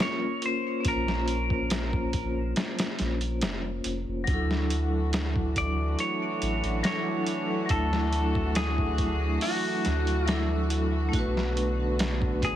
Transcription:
Already playing: vibraphone A#3
0.00 vibraphone C#4 F4 A#4, clean electric guitar C#5, snare
0.42 clean electric guitar C5, closed hi-hat
0.81 vibraphone A#3 C#4
0.85 sub bass A#1, vibraphone F4, clean electric guitar A#4, kick, closed hi-hat
0.90 vibraphone C5
1.08 snare
1.28 closed hi-hat
1.50 kick
1.70 snare, closed hi-hat
1.93 kick
2.13 kick, closed hi-hat
2.56 snare, closed hi-hat
2.79 snare, closed hi-hat
2.99 sub bass A#1, snare, closed hi-hat
3.21 closed hi-hat
3.41 sub bass F1, snare, closed hi-hat
3.84 sub bass F1, closed hi-hat
4.08 sub bass F1
4.24 string section E3 A3 D4 F#4, vibraphone F#3 D4, kick, closed hi-hat
4.28 sub bass D2, vibraphone E4
4.34 vibraphone A4
4.51 snare
4.70 closed hi-hat
5.13 snare, closed hi-hat
5.36 kick
5.56 clean electric guitar D5, kick, closed hi-hat
5.99 clean electric guitar C#5, closed hi-hat
6.42 sub bass A1, closed hi-hat
6.64 sub bass A1, closed hi-hat
6.83 vibraphone F#3 D4 E4, clean electric guitar C#5, snare, closed hi-hat
6.88 vibraphone A4
7.26 closed hi-hat
7.66 vibraphone F#3 D4, closed hi-hat
7.70 sub bass D2, vibraphone E4, clean electric guitar A4, kick
7.76 vibraphone A3
7.93 snare
8.13 closed hi-hat
8.35 kick
8.55 clean electric guitar G#4, snare, closed hi-hat
8.78 kick
8.98 kick, closed hi-hat
9.41 clean electric guitar F#4, open hi-hat
9.85 sub bass D2, snare, closed hi-hat
10.07 closed hi-hat
10.25 vibraphone F#3 D4 E4, clean electric guitar E4, snare, closed hi-hat
10.30 vibraphone A4
10.70 closed hi-hat
11.09 vibraphone A3 D4, string section B3
11.13 sub bass B1, string section D3, vibraphone F#4, kick, closed hi-hat
11.19 vibraphone B4
11.37 snare
11.57 closed hi-hat
11.99 snare, closed hi-hat
12.22 kick
12.42 clean electric guitar G#4, kick, closed hi-hat

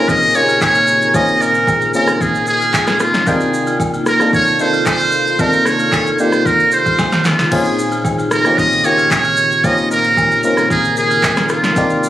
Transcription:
Already playing: fm electric piano A#2 C4 C#4 D#4 F4 G#4, string machine C#3 D#3 A#3 G#4 A#4, muted trumpet A#4, impact
0.08 muted trumpet D#5, kick, high agogo, shaker
0.22 shaker
0.34 fm electric piano A#2 A#3 C#4 D#4 F4 G4, muted trumpet C#5, shaker
0.42 fm electric piano G#4
0.48 high agogo, shaker
0.61 muted trumpet C#5, kick, clap, low woodblock, shaker
0.75 high agogo, shaker
0.87 shaker
1.02 shaker
1.14 fm electric piano A#2 C4 C#4 D#4 F4 G#4, muted trumpet D#5, kick, high agogo, shaker
1.28 shaker
1.42 muted trumpet A#4, shaker
1.54 high agogo, shaker
1.67 kick, low woodblock, shaker
1.81 high agogo, shaker
1.94 fm electric piano A#2 C4 C#4 D#4 F4 G#4, muted trumpet A#4, shaker
2.08 cross-stick, shaker
2.20 muted trumpet G#4, kick, high agogo, shaker
2.35 shaker
2.47 muted trumpet G#4, shaker
2.61 high agogo, shaker
2.73 kick, clap, low woodblock, shaker
2.87 cross-stick, snare, high agogo, shaker
3.00 muted trumpet F4, cross-stick, shaker
3.14 snare, shaker
3.27 fm electric piano C3 A#3 D4 D#4 F4 G5, string machine F4, muted trumpet G#4, kick, high agogo, shaker
3.40 shaker
3.54 shaker
3.67 high agogo, shaker
3.80 kick, low woodblock, shaker
3.94 high agogo, shaker
4.06 muted trumpet A#4, cross-stick, shaker
4.20 fm electric piano C3 A#3 D4 D#4 F4 A4, cross-stick, shaker
4.33 muted trumpet C#5, kick, high agogo, shaker
4.47 shaker
4.59 fm electric piano C3 A#3 D4 D#4 F4 A4, muted trumpet C5, shaker
4.73 high agogo, shaker
4.86 muted trumpet C5, kick, clap, low woodblock, shaker
4.99 high agogo, shaker
5.12 shaker
5.27 shaker
5.39 fm electric piano C3 A#3 D4 D#4 F4 A4, muted trumpet A#4, kick, high agogo, shaker
5.53 shaker
5.65 muted trumpet C#5, cross-stick, shaker
5.79 high agogo, shaker
5.92 kick, clap, low woodblock, shaker
6.06 high agogo, shaker
6.13 muted trumpet C#5
6.19 fm electric piano C3 A#3 D4 D#4 F4 G4, muted trumpet C5, shaker
6.32 cross-stick, shaker
6.45 muted trumpet A#4, kick, high agogo, shaker
6.60 shaker
6.72 muted trumpet C5, shaker
6.86 kick, high agogo, shaker
6.98 kick, snare, low woodblock, shaker
7.12 snare, high agogo, shaker
7.24 muted trumpet F4, snare, shaker
7.39 snare, shaker
7.51 fm electric piano A#2 C4 C#4 D#4 F4 G#4, string machine C#3 G#3, muted trumpet G#4, kick, crash, high agogo
7.65 shaker
7.79 shaker
7.92 high agogo, shaker
8.05 kick, low woodblock, shaker
8.18 high agogo, shaker
8.31 muted trumpet A#4, cross-stick, shaker
8.45 fm electric piano A#2 C4 C#4 D#4 F4 G4, cross-stick, shaker
8.57 muted trumpet D#5, kick, high agogo, shaker
8.72 shaker
8.84 fm electric piano A#2 A#3 C#4 D#4 F4 G4, muted trumpet C#5, shaker
8.98 high agogo, shaker
9.11 muted trumpet C#5, kick, clap, low woodblock, shaker
9.24 high agogo, shaker
9.37 shaker
9.52 shaker
9.64 fm electric piano A#2 C4 C#4 D#4 F4 G4, string machine A#4, muted trumpet D#5, kick, high agogo, shaker
9.78 shaker
9.91 muted trumpet A#4, shaker
10.04 high agogo, shaker
10.17 kick, low woodblock, shaker
10.31 high agogo, shaker
10.43 fm electric piano A#2 C4 C#4 D#4 F4 A#4, muted trumpet A#4, shaker
10.57 cross-stick, shaker
10.70 muted trumpet G#4, kick, high agogo, shaker
10.85 shaker
10.96 muted trumpet G#4, shaker
11.11 high agogo, shaker
11.23 kick, clap, low woodblock, shaker
11.37 cross-stick, snare, high agogo, shaker
11.49 muted trumpet F4, cross-stick, shaker
11.64 snare, shaker
11.76 fm electric piano C3 A#3 D4 D#4 F4 G4, string machine D#3 A#3 F4 D5, kick, high agogo, shaker
11.90 shaker
12.04 shaker

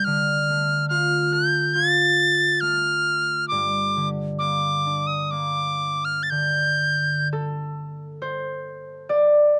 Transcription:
Already playing: harp D#4 G4
0.05 harp D3, tin whistle F6
0.49 harp A3
0.89 harp F4, tin whistle F6
1.32 harp A4, tin whistle G6
1.74 harp F4, tin whistle A6
2.61 harp A3, tin whistle F6
3.48 harp G2, tin whistle D6
3.96 harp D3
4.39 harp A#3, tin whistle D6
4.86 harp D4
5.07 tin whistle D#6
5.31 harp A#3, tin whistle D6
6.05 tin whistle F6
6.23 tin whistle A6
6.30 harp D3, tin whistle G6
7.33 harp A4
8.22 harp C5
9.09 harp D5

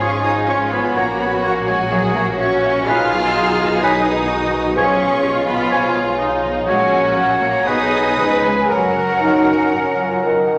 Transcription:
Already playing: double bass section G#1, trombone section F3 C#4, harp G#3 C#4 F4, violin section F4, viola section G#4, french horn section G#4 C#5
0.00 harp G#2, bassoon F3, cello section C#4, oboe C#5, flute section G#5, violin section C#6
0.23 bassoon F3, harp C#4, cello section D#4, oboe C#5, flute section G#5, violin section D#6
0.47 bassoon F3, cello section C#4, viola section F4, harp F4, oboe C#5, flute section G#5, violin section C#6
0.72 bassoon F3, harp G#3, cello section B3, oboe C#5, flute section G#5, violin section B5
0.95 double bass section A#1, harp A#2, bassoon F#3, trombone section F#3, cello section A#3, violin section F#4 A#5, viola section F#4, oboe C#5, flute section F#5
1.19 bassoon F#3, harp A#3, cello section B3, oboe C#5, flute section F#5, violin section B5
1.43 bassoon F#3, cello section A#3, harp F#4, oboe C#5, flute section F#5, violin section A#5
1.67 bassoon F#3, cello section G#3, harp A#3, oboe C#5, flute section F#5, violin section G#5
1.90 harp A#2, trombone section E3, cello section F#3, bassoon F#3, french horn section F#4, viola section G#4, oboe C#5, flute section E5, violin section F#5
2.14 bassoon F#3, cello section A#3, harp A#3, oboe C#5, flute section E5, violin section A#5
2.37 bassoon F#3, cello section C#4, viola section F#4, harp F#4, oboe C#5, flute section E5, violin section C#6
2.62 bassoon F#3, harp A#3, oboe C#5, flute section E5
2.86 double bass section B1, harp B2, trombone section D#3 G#3, bassoon F#3, violin section D#4 F6, cello section F4, viola section G#4, french horn section B4, oboe B4, flute section G#5
3.11 harp F#3
3.35 harp F#4
3.59 harp F#3
3.82 harp B2, bassoon F#3, cello section D#4, oboe B4, flute section G#5, violin section D#6
4.07 harp G#3
4.30 viola section F#4, harp F#4
4.54 harp F#3
4.76 harp B2, trombone section F3, bassoon F3, cello section C#4, violin section F4 C#6, french horn section G#4 C#5, viola section G#4, oboe C#5, flute section G#5
5.01 harp F3
5.24 viola section F4, harp F4
5.48 harp F3, cello section B3, violin section B5
5.72 harp B2, bassoon F3, oboe C#5, flute section G#5
5.96 harp G#3
6.19 viola section D#4, harp F4
6.44 harp F3
6.67 double bass section A#1, harp A#2, bassoon F#3, trombone section F#3 A#3, cello section G#3, viola section C#4, violin section F#4 G#5, french horn section F#4, oboe C#5, flute section F#5
6.92 harp A#3
7.15 bassoon F#3, cello section F#3, harp F#4, oboe C#5, flute section F#5, violin section F#5
7.41 harp A#3, cello section A#3, violin section A#5
7.66 double bass section B1, harp B2, bassoon F#3, viola section B3, trombone section B3, cello section D#4, violin section G#4 D#6, french horn section G#4 B4, oboe B4, flute section G#5
7.92 harp F#4 B4
8.17 double bass section C#2, harp C#3, bassoon F3, trombone section F3 C#4, viola section G#4, violin section B4, oboe B4, flute section G#5
8.43 cello section G#3, harp F4 B4, violin section G#5
8.68 double bass section F#2, harp F#2, bassoon F#3, trombone section F#3, cello section F#3, viola section F#4, french horn section F#4 A#4, violin section A#4 F#5, oboe A#4, flute section F#5
8.95 harp C#3
9.19 french horn section D#4, harp F#4
9.46 harp C#3
9.69 harp F#2, french horn section C#4
9.97 harp F#3, french horn section F4
10.22 bassoon D#3, harp F#4, french horn section A#4
10.51 harp C#3

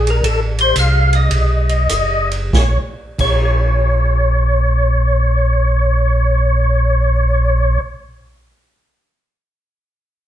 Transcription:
Already playing: tonewheel organ A#1
0.07 tonewheel organ A#4, ride
0.23 tonewheel organ A1 A4, kick, ride
0.58 tonewheel organ C5, ride
0.76 tonewheel organ C2 F5, kick, hi-hat pedal, ride
1.13 tonewheel organ D#5, ride
1.31 tonewheel organ B1, kick, ride
1.69 ride
1.89 tonewheel organ F#1, kick, hi-hat pedal, ride
2.31 ride
2.53 tonewheel organ A#1 C#5, kick, snare
3.19 tonewheel organ A#1 C#5, kick, crash

